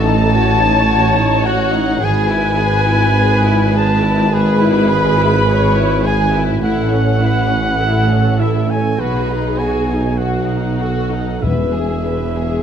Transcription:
0.00 1.99 A1 medium
0.00 1.99 A2 medium
0.00 0.32 A4 medium
0.00 1.46 A5 loud
0.00 1.48 A5 loud
0.04 0.33 D#4 medium
0.32 0.61 F#4 medium
0.32 2.03 C#5 medium
0.61 0.89 D#4 medium
0.89 1.15 F#4 medium
1.17 1.46 D#4 medium
1.44 1.75 F#4 medium
1.44 2.01 F#5 medium
1.44 2.06 F#5 medium
1.74 2.03 D#4 medium
2.02 6.59 G#1 medium
2.02 6.65 G#1 medium
2.02 6.59 G#2 medium
2.02 2.29 G#4 medium
2.02 4.33 B4 medium
2.02 3.76 G#5 medium
2.02 3.77 G#5 loud
2.30 2.60 E4 medium
2.60 2.89 G#4 medium
2.88 3.18 E4 medium
3.18 3.45 G#4 medium
3.46 3.75 E4 medium
3.74 4.03 G#4 medium
3.74 4.33 A5 medium
3.74 4.35 A5 loud
4.03 4.32 E4 medium
4.32 4.59 G#4 medium
4.32 5.48 G#4 medium
4.32 6.07 B4 loud
4.32 6.06 B5 loud
4.61 4.90 E4 medium
4.90 5.19 G#4 medium
5.19 5.48 E4 medium
5.48 5.75 G#4 medium
5.48 6.06 C#5 medium
5.76 6.05 E4 medium
6.06 6.35 G#4 medium
6.06 6.63 B4 medium
6.06 6.43 G#5 medium
6.06 6.63 G#5 medium
6.35 6.62 E4 soft
6.63 8.99 A1 medium
6.63 9.01 A1 medium
6.63 8.99 A2 medium
6.63 6.90 E4 medium
6.63 7.21 A4 medium
6.63 8.37 F#5 medium
6.63 8.42 F#5 loud
6.92 7.22 C#4 soft
7.22 7.51 E4 soft
7.22 7.81 B4 medium
7.50 7.80 C#4 soft
7.80 8.08 E4 soft
7.80 8.99 A4 medium
8.10 8.40 C#4 soft
8.40 8.69 E4 soft
8.40 8.72 E5 medium
8.40 8.70 E5 medium
8.69 8.99 C#4 soft
8.69 9.02 G#5 medium
8.69 9.00 G#5 medium
8.98 11.43 B1 medium
8.98 11.44 B1 medium
8.98 11.43 B2 soft
8.98 9.27 F#4 soft
8.98 10.19 G#4 medium
8.98 9.60 B4 medium
8.98 9.59 B5 medium
9.30 9.59 D#4 soft
9.59 9.89 F#4 soft
9.59 10.19 G#5 medium
9.59 10.20 G#5 medium
9.90 10.20 D#4 soft
10.18 10.78 F#4 soft
10.18 10.48 F#4 soft
10.18 11.44 F#5 medium
10.18 11.41 F#5 soft
10.50 10.80 D#4 soft
10.79 11.12 F#4 soft
10.79 11.42 A4 soft
11.12 11.43 D#4 soft
11.42 12.63 E1 soft
11.42 12.63 E2 soft
11.42 12.63 E2 medium
11.42 12.63 G#4 soft
11.42 11.73 B4 soft
11.42 12.63 E5 medium
11.42 12.63 E5 soft
11.74 12.06 G#4 soft
12.06 12.38 B4 soft
12.38 12.63 G#4 soft

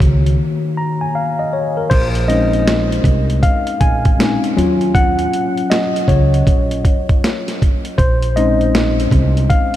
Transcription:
0.00 0.35 C#2 medium
0.00 1.92 D#3 medium
0.00 1.93 A#3 medium
0.00 1.92 F#4 medium
0.00 1.53 C#5 medium
0.00 0.78 A#5 medium
0.00 kick medium
0.00 closed hi-hat medium
0.26 closed hi-hat soft
0.78 1.00 A#5 medium
1.01 1.14 G#5 medium
1.15 1.38 F5 medium
1.39 1.52 D#5 medium
1.53 1.76 C#5 medium
1.77 2.13 A#4 medium
1.90 3.01 A#1 loud
1.90 2.07 C5 loud
1.90 kick loud
1.90 closed hi-hat medium
1.90 crash medium
2.15 closed hi-hat medium
2.28 4.18 G#3 medium
2.28 4.18 C4 soft
2.28 4.18 C#4 medium
2.28 4.18 D#4 medium
2.28 3.46 D#5 medium
2.28 closed hi-hat medium
2.53 closed hi-hat soft
2.68 snare loud
2.68 closed hi-hat medium
2.92 closed hi-hat medium
3.04 3.38 C2 medium
3.04 kick medium
3.04 closed hi-hat medium
3.30 closed hi-hat soft
3.43 3.82 F5 loud
3.43 kick medium
3.43 closed hi-hat medium
3.67 closed hi-hat medium
3.81 4.36 A#1 medium
3.81 4.91 G#5 loud
3.81 kick medium
3.81 closed hi-hat medium
4.05 kick medium
4.05 closed hi-hat soft
4.19 4.53 G#3 soft
4.19 4.53 C4 soft
4.19 4.53 C#4 soft
4.19 4.53 D#4 medium
4.19 snare loud
4.19 closed hi-hat medium
4.44 closed hi-hat soft
4.56 5.25 D#2 medium
4.56 5.11 F#3 medium
4.56 5.11 C#4 medium
4.56 5.11 F4 medium
4.56 closed hi-hat medium
4.81 closed hi-hat soft
4.95 5.66 F#5 loud
4.95 kick loud
4.95 closed hi-hat medium
5.19 closed hi-hat medium
5.33 closed hi-hat medium
5.57 closed hi-hat soft
5.70 5.87 D#5 medium
5.70 snare loud
5.70 closed hi-hat medium
5.96 closed hi-hat medium
6.08 6.42 C#2 medium
6.08 7.18 C#5 medium
6.08 kick medium
6.08 closed hi-hat medium
6.34 closed hi-hat medium
6.47 6.81 A#1 medium
6.47 kick medium
6.47 closed hi-hat medium
6.71 closed hi-hat medium
6.85 kick medium
6.85 closed hi-hat medium
7.09 kick medium
7.09 closed hi-hat soft
7.24 snare medium
7.24 closed hi-hat medium
7.48 snare soft
7.48 closed hi-hat medium
7.62 kick loud
7.62 closed hi-hat medium
7.85 closed hi-hat soft
7.98 9.08 A#1 loud
7.98 8.33 C5 loud
7.98 kick loud
7.98 closed hi-hat medium
8.22 closed hi-hat medium
8.36 8.91 G#3 medium
8.36 8.91 C4 medium
8.36 8.91 C#4 medium
8.36 8.91 D#4 medium
8.36 9.46 D#5 medium
8.36 closed hi-hat medium
8.61 closed hi-hat soft
8.75 snare loud
8.75 closed hi-hat medium
9.00 closed hi-hat medium
9.11 9.46 C2 loud
9.11 kick medium
9.11 closed hi-hat medium
9.37 closed hi-hat soft
9.50 9.67 F5 loud
9.50 kick medium
9.50 closed hi-hat medium

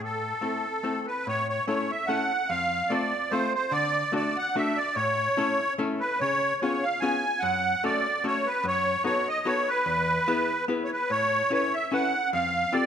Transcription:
0.00 0.32 A2 soft
0.04 1.06 A4 medium
0.41 0.65 A3 soft
0.41 0.65 C4 soft
0.41 0.65 E4 soft
0.41 0.65 A4 soft
0.83 1.07 A3 medium
0.83 1.07 C4 soft
0.83 1.08 E4 soft
0.83 1.08 A4 medium
1.07 1.27 B4 medium
1.27 1.59 A2 medium
1.27 1.47 C#5 medium
1.49 1.66 C#5 medium
1.67 1.91 A3 medium
1.67 1.91 C#4 soft
1.67 1.91 E4 soft
1.67 1.91 A4 soft
1.67 1.91 C#5 medium
1.90 2.08 E5 medium
2.07 2.31 A3 soft
2.07 2.31 C#4 soft
2.07 2.32 E4 soft
2.07 2.32 A4 medium
2.07 2.50 F#5 medium
2.49 2.81 F2 medium
2.49 2.92 F5 medium
2.89 3.13 A3 medium
2.89 3.13 C4 soft
2.89 3.13 F4 soft
2.89 3.13 A4 medium
2.89 3.32 D5 medium
3.31 3.54 A3 medium
3.31 3.54 C4 soft
3.31 3.54 F4 soft
3.31 3.54 A4 medium
3.31 3.53 C5 medium
3.54 3.73 C5 medium
3.71 4.03 D3 medium
3.71 4.14 D5 medium
4.12 4.35 A3 medium
4.12 4.36 D4 medium
4.12 4.35 F#4 soft
4.12 4.36 A4 medium
4.12 4.37 D5 medium
4.37 4.56 F#5 medium
4.56 4.78 A3 medium
4.56 4.77 D4 medium
4.56 4.78 F#4 medium
4.56 4.77 A4 medium
4.56 4.78 E5 medium
4.77 4.96 D5 medium
4.95 5.27 A2 medium
4.95 5.74 C#5 medium
5.37 5.59 A3 medium
5.37 5.59 C#4 medium
5.37 5.59 E4 medium
5.37 5.60 A4 medium
5.78 6.01 A3 medium
5.78 6.01 C#4 medium
5.78 6.01 E4 medium
5.78 6.01 A4 medium
6.00 6.20 B4 medium
6.20 6.52 C#3 medium
6.20 6.60 C#5 medium
6.62 6.84 B3 medium
6.62 6.84 C#4 soft
6.62 6.84 F4 medium
6.62 6.84 G#4 medium
6.62 6.84 C#5 medium
6.83 7.00 F5 medium
7.00 7.25 B3 medium
7.00 7.24 C#4 medium
7.00 7.24 F4 medium
7.00 7.24 G#4 medium
7.00 7.43 G#5 medium
7.40 7.74 F#2 medium
7.40 7.83 F#5 medium
7.84 8.06 A3 medium
7.84 8.06 C#4 medium
7.84 8.06 F#4 medium
7.84 8.06 A4 medium
7.84 8.26 D5 medium
8.24 8.47 A3 medium
8.24 8.47 C#4 soft
8.24 8.47 F#4 medium
8.24 8.47 A4 medium
8.24 8.49 C#5 medium
8.47 8.66 B4 medium
8.64 8.95 F#2 medium
8.64 9.03 C#5 medium
9.04 9.27 B3 medium
9.04 9.27 D#4 medium
9.04 9.27 F#4 medium
9.04 9.28 A4 medium
9.04 9.28 C#5 medium
9.29 9.47 D#5 medium
9.45 9.68 B3 medium
9.45 9.68 D#4 medium
9.45 9.68 F#4 medium
9.45 9.68 A4 medium
9.45 9.69 C#5 medium
9.68 10.65 B4 medium
9.86 10.18 E2 medium
10.28 10.50 B3 medium
10.28 10.50 E4 medium
10.28 10.50 G#4 medium
10.28 10.50 B4 medium
10.68 10.91 B3 medium
10.68 10.91 E4 medium
10.68 10.91 G#4 medium
10.68 10.91 B4 medium
10.84 10.91 C#5 soft
10.92 11.11 B4 medium
11.10 11.41 A2 medium
11.10 11.52 C#5 medium
11.50 11.73 C#4 medium
11.50 11.73 E4 soft
11.50 11.73 A4 soft
11.50 11.73 B4 medium
11.50 11.75 C#5 medium
11.74 11.93 E5 medium
11.92 12.14 C#4 medium
11.92 12.14 E4 soft
11.92 12.14 A4 medium
11.92 12.14 B4 medium
11.92 12.30 F#5 medium
12.33 12.64 F2 medium
12.33 12.74 F5 medium
12.72 12.86 C4 medium
12.72 12.86 F4 medium
12.72 12.86 G4 medium
12.72 12.86 A4 medium
12.72 12.86 D5 medium

